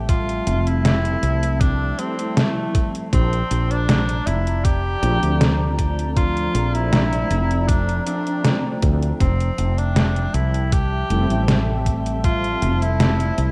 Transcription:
0.00 0.39 A1 medium
0.00 13.52 F3 medium
0.00 1.94 G3 medium
0.00 1.94 A3 medium
0.00 1.95 C4 medium
0.00 1.95 E5 medium
0.00 3.09 E5 medium
0.00 3.09 G5 medium
0.00 6.13 A5 medium
0.09 0.69 F4 loud
0.09 kick loud
0.09 closed hi-hat medium
0.29 closed hi-hat soft
0.47 1.15 F1 medium
0.47 closed hi-hat medium
0.67 1.62 E4 loud
0.67 closed hi-hat medium
0.85 snare loud
0.85 closed hi-hat medium
1.05 closed hi-hat soft
1.23 1.91 C2 medium
1.23 closed hi-hat medium
1.43 closed hi-hat medium
1.61 2.01 D4 loud
1.61 kick loud
1.61 closed hi-hat medium
1.98 2.15 G3 loud
1.98 2.16 A3 medium
1.98 2.16 C4 medium
1.98 2.38 C4 medium
1.98 2.16 E4 loud
1.98 closed hi-hat medium
2.17 3.10 G3 medium
2.17 3.10 A3 medium
2.17 3.11 C4 medium
2.17 3.11 E4 medium
2.17 closed hi-hat medium
2.37 2.95 A3 loud
2.37 snare loud
2.37 closed hi-hat medium
2.75 kick loud
2.75 closed hi-hat medium
2.95 closed hi-hat medium
3.13 3.41 A#1 loud
3.13 3.73 C4 loud
3.13 9.17 D5 medium
3.13 9.16 A#5 medium
3.13 kick loud
3.13 closed hi-hat medium
3.33 closed hi-hat soft
3.51 4.19 A#1 medium
3.51 closed hi-hat medium
3.71 4.28 D4 loud
3.71 closed hi-hat medium
3.89 snare loud
3.89 closed hi-hat medium
4.09 closed hi-hat soft
4.27 4.95 F1 medium
4.27 4.66 E4 loud
4.27 closed hi-hat medium
4.47 closed hi-hat medium
4.64 5.78 G4 loud
4.64 kick loud
4.64 closed hi-hat medium
5.02 5.17 A#1 loud
5.02 5.19 F3 medium
5.02 5.20 A3 medium
5.02 5.20 C4 medium
5.02 5.20 D4 loud
5.02 closed hi-hat medium
5.21 6.47 D2 medium
5.21 8.01 F3 medium
5.21 8.02 A3 medium
5.21 8.02 C4 medium
5.21 8.03 D4 medium
5.21 closed hi-hat medium
5.41 snare loud
5.41 closed hi-hat medium
5.79 kick medium
5.79 closed hi-hat medium
5.99 closed hi-hat medium
6.17 6.76 F4 loud
6.17 13.52 G5 medium
6.17 kick loud
6.17 closed hi-hat medium
6.37 closed hi-hat soft
6.55 7.23 A#1 medium
6.55 closed hi-hat medium
6.74 7.69 E4 loud
6.74 closed hi-hat medium
6.93 snare loud
6.93 closed hi-hat medium
7.13 closed hi-hat soft
7.30 7.99 F1 medium
7.30 closed hi-hat medium
7.51 closed hi-hat medium
7.68 8.05 D4 loud
7.68 kick loud
7.68 closed hi-hat medium
7.89 closed hi-hat soft
8.06 8.23 F3 medium
8.06 8.23 A3 medium
8.06 8.24 C4 medium
8.06 8.78 D4 medium
8.06 8.24 D4 loud
8.06 closed hi-hat medium
8.25 9.18 F3 medium
8.25 9.18 A3 medium
8.25 9.19 C4 medium
8.25 9.19 D4 medium
8.25 closed hi-hat soft
8.44 snare loud
8.44 closed hi-hat medium
8.82 9.11 D2 loud
8.82 kick loud
8.82 closed hi-hat medium
9.03 closed hi-hat soft
9.20 9.49 F1 loud
9.20 9.80 C4 medium
9.20 13.52 E5 medium
9.20 13.52 A5 medium
9.20 kick loud
9.20 closed hi-hat medium
9.40 closed hi-hat soft
9.58 10.27 F1 medium
9.58 closed hi-hat medium
9.78 10.36 D4 loud
9.78 closed hi-hat soft
9.96 snare loud
9.96 closed hi-hat medium
10.16 closed hi-hat soft
10.34 11.03 C2 medium
10.34 10.74 E4 loud
10.34 closed hi-hat medium
10.54 closed hi-hat medium
10.72 11.86 G4 loud
10.72 kick loud
10.72 closed hi-hat medium
11.09 11.25 F1 loud
11.09 11.27 G3 loud
11.09 11.27 A3 medium
11.09 11.27 C4 medium
11.09 11.28 E4 loud
11.09 closed hi-hat medium
11.29 12.55 A1 medium
11.29 13.52 G3 medium
11.29 13.52 A3 medium
11.29 13.52 C4 medium
11.29 13.52 E5 medium
11.29 closed hi-hat medium
11.48 snare loud
11.48 closed hi-hat medium
11.86 kick medium
11.86 closed hi-hat medium
12.06 closed hi-hat soft
12.24 12.84 F4 loud
12.24 kick loud
12.24 closed hi-hat medium
12.44 closed hi-hat soft
12.62 13.31 F1 medium
12.62 closed hi-hat medium
12.82 13.52 E4 loud
12.82 closed hi-hat soft
13.00 snare loud
13.00 closed hi-hat medium
13.20 closed hi-hat soft
13.38 13.52 C2 medium
13.38 closed hi-hat medium

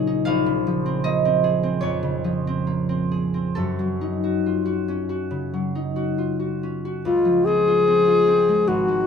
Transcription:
0.00 0.26 A#1 soft
0.00 0.31 A#2 soft
0.00 0.31 C#3 soft
0.00 0.31 F#3 soft
0.00 1.43 G#4 soft
0.00 1.79 C#5 medium
0.00 0.30 D#5 medium
0.00 0.24 F5 medium
0.07 0.30 D#4 soft
0.25 3.58 A#1 soft
0.25 3.58 F5 medium
0.46 2.01 C#3 soft
0.67 2.23 F3 soft
0.86 1.24 C4 soft
1.04 1.38 A#3 soft
1.04 2.40 D#5 medium
1.25 1.62 C4 soft
1.44 3.10 G#4 soft
1.63 2.46 C4 soft
1.81 3.58 F2 soft
1.81 5.71 C#5 medium
2.03 3.58 C#3 soft
2.24 3.59 F3 soft
2.47 2.88 C4 soft
2.67 3.04 A#3 soft
2.89 3.33 C4 soft
3.12 3.59 G#4 soft
3.34 3.59 C4 soft
3.55 7.10 F#2 soft
3.55 7.09 A4 soft
3.79 5.52 F#3 soft
4.01 5.74 D#4 soft
4.24 4.64 F#4 soft
4.46 4.82 F4 soft
4.66 5.08 F#4 soft
4.88 6.62 C#4 soft
5.09 5.95 F#4 soft
5.31 7.09 C#3 soft
5.54 7.09 F#3 soft
5.75 7.09 D#4 soft
5.96 6.38 F#4 soft
6.18 6.56 F4 soft
6.40 6.84 F#4 soft
6.63 9.07 C#4 soft
6.85 7.09 F#4 soft
7.05 8.71 C#2 soft
7.05 7.46 F4 medium
7.25 8.71 F3 soft
7.45 7.86 C4 soft
7.45 8.69 G#4 medium
7.68 8.06 F4 soft
7.88 8.26 C4 soft
8.08 8.72 F4 soft
8.27 8.71 C4 soft
8.49 8.87 G#3 soft
8.67 9.07 G#1 soft
8.67 9.07 F#4 medium
8.88 9.07 G#3 soft

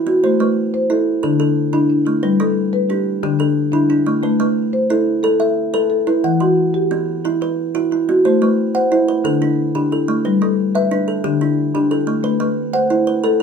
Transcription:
0.00 0.40 E4 medium
0.00 0.23 F#4 medium
0.06 0.40 B3 medium
0.06 0.40 F#4 medium
0.24 0.57 A3 medium
0.24 0.57 C5 medium
0.40 0.73 A3 medium
0.40 0.90 B4 medium
0.74 1.07 C5 medium
0.90 1.23 E4 medium
0.90 1.40 A4 medium
1.23 1.57 D3 medium
1.23 1.38 D4 medium
1.23 1.38 A4 medium
1.40 1.72 D4 medium
1.40 1.90 A4 medium
1.73 2.06 D3 medium
1.73 1.88 D4 medium
1.73 2.23 E4 medium
1.90 2.40 D4 medium
2.05 2.40 A3 medium
2.05 2.39 E4 medium
2.23 2.56 G3 medium
2.23 2.56 B4 medium
2.40 2.73 G3 medium
2.40 2.90 A4 medium
2.73 3.06 B4 medium
2.90 3.23 D4 medium
2.90 3.40 G4 medium
3.23 3.57 D3 medium
3.23 3.38 D4 medium
3.23 3.40 G4 medium
3.39 3.71 D4 medium
3.39 3.90 A4 medium
3.72 4.07 D3 medium
3.72 3.88 D4 medium
3.72 4.23 E4 medium
3.90 4.40 D4 medium
4.06 4.39 A3 medium
4.06 4.40 E4 medium
4.23 4.56 A3 medium
4.23 4.57 B4 medium
4.40 4.73 A3 medium
4.40 4.90 B4 medium
4.73 5.07 C5 medium
4.90 5.24 E4 medium
4.90 5.22 A4 medium
5.23 5.39 A4 medium
5.23 5.57 A4 medium
5.40 5.73 A4 medium
5.40 5.90 E5 medium
5.74 6.07 A4 medium
5.74 5.89 A4 medium
5.74 6.24 B4 medium
5.90 6.40 A4 medium
6.07 6.41 E4 medium
6.07 6.41 B4 medium
6.24 6.57 E3 medium
6.24 6.57 F#5 medium
6.40 6.74 E3 medium
6.40 6.91 F#4 medium
6.74 7.08 G4 medium
6.91 7.24 B3 medium
7.25 7.40 E4 medium
7.25 7.58 E4 medium
7.41 7.74 E4 medium
7.41 7.92 B4 medium
7.75 7.91 E4 medium
7.75 7.90 E4 medium
7.75 8.25 F#4 medium
7.91 8.41 E4 medium
7.91 8.42 E4 medium
8.09 8.42 B3 medium
8.09 8.42 F#4 medium
8.25 8.58 A3 medium
8.25 8.58 C5 medium
8.42 8.75 A3 medium
8.42 8.91 B4 medium
8.75 8.91 C5 medium
8.75 9.25 F#5 medium
8.92 9.25 E4 medium
8.92 9.41 C5 medium
9.08 9.58 B4 medium
9.24 9.58 D3 medium
9.24 9.74 D4 medium
9.24 9.41 A4 medium
9.42 9.91 D4 medium
9.42 9.91 E4 medium
9.75 10.08 D3 medium
9.75 10.08 D4 medium
9.75 10.25 G4 medium
9.92 10.41 E4 medium
9.92 10.42 A4 medium
10.08 10.41 A3 medium
10.25 10.58 G3 medium
10.25 10.58 B4 medium
10.42 10.75 G3 medium
10.42 10.91 A4 medium
10.75 10.91 B4 medium
10.75 11.25 E5 medium
10.91 11.24 D4 medium
10.91 11.41 B4 medium
11.08 11.57 A4 medium
11.24 11.57 D3 medium
11.24 11.74 D4 medium
11.24 11.41 G4 medium
11.41 11.91 D4 medium
11.41 11.90 E4 medium
11.75 12.08 D3 medium
11.75 12.08 D4 medium
11.75 12.24 G4 medium
11.91 12.41 E4 medium
11.91 12.41 A4 medium
12.07 12.39 A3 medium
12.23 12.57 A3 medium
12.23 12.57 B4 medium
12.40 12.73 A3 medium
12.40 12.90 B4 medium
12.73 12.90 C5 medium
12.73 13.23 F#5 medium
12.90 13.23 E4 medium
12.90 13.40 C5 medium
13.07 13.43 B4 medium
13.24 13.39 A4 medium
13.24 13.43 A4 medium

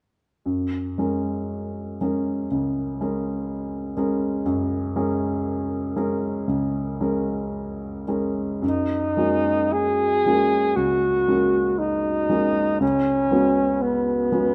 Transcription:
0.46 0.96 F#2 soft
0.98 1.97 G#3 soft
0.98 1.98 C#4 soft
0.98 1.98 G#4 soft
0.98 1.97 A#4 soft
2.01 2.47 G#3 soft
2.01 2.47 C#4 soft
2.01 2.47 G#4 soft
2.01 2.47 A#4 soft
2.51 2.98 C#2 soft
3.01 3.93 G#3 soft
3.01 3.94 C#4 soft
3.01 3.94 G#4 soft
3.01 3.94 A#4 soft
3.97 4.42 G#3 soft
3.97 4.43 C#4 soft
3.97 4.43 G#4 soft
3.97 4.43 A#4 soft
4.46 4.94 F#2 soft
4.96 5.92 G#3 soft
4.96 5.92 C#4 soft
4.96 5.92 G#4 soft
4.96 5.92 A#4 soft
5.96 6.44 G#3 soft
5.96 6.44 C#4 soft
5.96 6.45 G#4 soft
5.96 6.45 A#4 soft
6.47 6.99 C#2 soft
7.01 8.04 G#3 soft
7.01 8.04 C#4 soft
7.01 8.05 G#4 soft
7.01 8.05 A#4 soft
8.08 8.59 G#3 soft
8.08 8.59 C#4 soft
8.08 8.59 G#4 soft
8.08 8.59 A#4 soft
8.62 9.16 F#2 soft
8.62 9.74 D#4 medium
9.17 10.22 G#3 soft
9.17 10.22 A#3 soft
9.17 10.22 C#4 soft
9.17 10.22 F#4 soft
9.73 10.77 G#4 medium
10.26 10.73 G#3 soft
10.26 10.74 A#3 soft
10.26 10.74 C#4 soft
10.26 10.74 F#4 soft
10.76 11.26 C#2 soft
10.76 11.80 F#4 medium
11.28 12.26 G#3 soft
11.28 12.27 A#3 soft
11.28 12.27 C#4 soft
11.28 12.27 F#4 soft
11.79 12.80 D#4 soft
12.29 12.77 G#3 soft
12.29 12.77 A#3 soft
12.29 12.77 C#4 soft
12.29 12.77 F#4 soft
12.80 13.30 C#2 soft
12.80 13.83 C#4 medium
13.31 14.28 G#3 soft
13.31 14.29 B3 soft
13.31 14.29 C#4 soft
13.31 14.29 F#4 soft
13.81 14.55 B3 soft
14.32 14.55 G#3 soft
14.32 14.55 B3 soft
14.32 14.55 C#4 soft
14.32 14.55 F#4 soft

